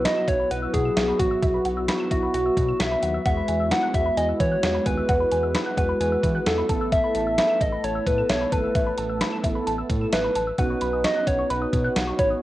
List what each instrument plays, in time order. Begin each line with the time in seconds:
Already playing: analog polysynth F#3 B3 E4 F#4
0.05 soft synth lead D#5, synth pluck B5, snare, closed hi-hat
0.17 synth pluck E7
0.28 analog synth bass B1, soft synth lead C#5, synth pluck E5, kick, closed hi-hat
0.40 synth pluck B5
0.51 analog synth bass B1, soft synth lead B4, synth pluck F#5, closed hi-hat
0.62 synth pluck E6
0.74 analog synth bass B2, soft synth lead G#4, kick, closed hi-hat
0.85 synth pluck E7
0.97 analog synth bass B1, synth pluck E5, snare, closed hi-hat
1.08 synth pluck B5
1.20 analog synth bass A1, soft synth lead F#4, synth pluck F#5, kick, closed hi-hat
1.31 synth pluck E6
1.42 analog synth bass B1, synth pluck E5, kick, closed hi-hat
1.54 synth pluck B5
1.65 analog synth bass B1, synth pluck F#5, closed hi-hat
1.77 synth pluck E6
1.88 synth pluck B5, snare, closed hi-hat
2.00 synth pluck E7
2.11 analog synth bass B1, soft synth lead F#4, synth pluck E5, kick, closed hi-hat
2.23 synth pluck B5
2.34 analog synth bass B1, soft synth lead F#4, synth pluck F#5, closed hi-hat
2.46 synth pluck E6
2.57 analog synth bass B2, kick, closed hi-hat
2.68 synth pluck E7
2.80 analog synth bass B1, soft synth lead E5, synth pluck E5, snare, closed hi-hat
2.91 synth pluck B5
3.03 analog synth bass D#2, synth pluck F#5, closed hi-hat
3.14 synth pluck E6
3.25 analog synth bass E2, analog polysynth G#3 B3 E4 F#4, soft synth lead E5, synth pluck F#5, kick, closed hi-hat
3.37 synth pluck B5
3.48 analog synth bass E2, synth pluck G#5, closed hi-hat
3.60 synth pluck E6
3.71 soft synth lead F#5, synth pluck B5, snare, closed hi-hat
3.83 synth pluck F#6
3.94 analog synth bass E2, soft synth lead E5, synth pluck F#5, kick, closed hi-hat
4.06 synth pluck B5
4.17 analog synth bass E2, soft synth lead D#5, synth pluck G#5, closed hi-hat
4.29 synth pluck E6
4.40 analog synth bass E3, soft synth lead C#5, kick, closed hi-hat
4.52 synth pluck F#6
4.63 analog synth bass E2, synth pluck F#5, snare, closed hi-hat
4.75 synth pluck B5
4.86 analog synth bass D#2, soft synth lead B4, synth pluck G#5, kick, closed hi-hat
4.97 synth pluck E6
5.09 analog synth bass E2, synth pluck F#5, kick, closed hi-hat
5.20 synth pluck B5
5.31 analog synth bass E2, synth pluck G#5, closed hi-hat
5.43 synth pluck E6
5.55 synth pluck B5, snare, closed hi-hat
5.66 synth pluck F#6
5.77 analog synth bass E2, soft synth lead B4, synth pluck F#5, kick, closed hi-hat
5.89 synth pluck B5
6.00 analog synth bass E2, soft synth lead B4, synth pluck G#5, closed hi-hat
6.12 synth pluck E6
6.23 analog synth bass E3, kick, closed hi-hat
6.35 synth pluck F#6
6.46 analog synth bass E2, soft synth lead A4, synth pluck F#5, snare, closed hi-hat
6.58 synth pluck B5
6.69 analog synth bass A1, analog polysynth A3 B3 E4 A4, synth pluck A5, kick, closed hi-hat
6.81 synth pluck E6
6.92 soft synth lead E5, synth pluck E5, kick, closed hi-hat
7.04 synth pluck B5
7.15 analog synth bass A1, synth pluck A5, closed hi-hat
7.27 synth pluck E6
7.38 soft synth lead E5, synth pluck B5, snare, closed hi-hat
7.49 synth pluck E7
7.61 analog synth bass A1, soft synth lead D#5, synth pluck E5, kick, closed hi-hat
7.72 synth pluck B5
7.84 analog synth bass A1, soft synth lead C#5, synth pluck A5, closed hi-hat
7.95 synth pluck E6
8.06 analog synth bass A2, soft synth lead B4, kick, closed hi-hat
8.18 synth pluck E7
8.29 analog synth bass B1, soft synth lead C#5, synth pluck E5, snare, closed hi-hat
8.41 synth pluck B5
8.52 analog synth bass G#1, soft synth lead B4, synth pluck A5, kick, closed hi-hat
8.64 synth pluck E6
8.75 analog synth bass A1, synth pluck E5, kick, closed hi-hat
8.87 synth pluck B5
8.98 analog synth bass A1, synth pluck A5, closed hi-hat
9.10 synth pluck E6
9.21 synth pluck B5, snare, closed hi-hat
9.32 synth pluck E7
9.44 analog synth bass A1, synth pluck E5, kick, closed hi-hat
9.55 synth pluck B5
9.67 analog synth bass A1, synth pluck A5, closed hi-hat
9.78 synth pluck E6
9.90 analog synth bass A2, kick, closed hi-hat
10.01 synth pluck E7
10.13 analog synth bass A1, soft synth lead B4, synth pluck E5, snare, closed hi-hat
10.24 synth pluck B5
10.35 analog synth bass A1, synth pluck A5, closed hi-hat
10.47 synth pluck E6
10.58 analog synth bass B1, analog polysynth B3 C#4 D#4 F#4, soft synth lead B4, synth pluck F#5, kick, closed hi-hat
10.70 synth pluck C#6
10.81 analog synth bass B1, synth pluck B5, closed hi-hat
10.93 synth pluck D#6
11.04 soft synth lead D#5, synth pluck C#6, snare, closed hi-hat
11.16 synth pluck F#6
11.27 analog synth bass B1, soft synth lead C#5, synth pluck F#5, kick, closed hi-hat
11.39 synth pluck C#6
11.50 analog synth bass B1, soft synth lead B4, synth pluck B5, closed hi-hat
11.62 synth pluck D#6
11.73 analog synth bass B2, kick, closed hi-hat
11.84 synth pluck F#6
11.96 analog synth bass B1, synth pluck F#5, snare, closed hi-hat
12.07 synth pluck C#6
12.19 analog synth bass A1, soft synth lead C#5, synth pluck B5, kick, closed hi-hat
12.30 synth pluck D#6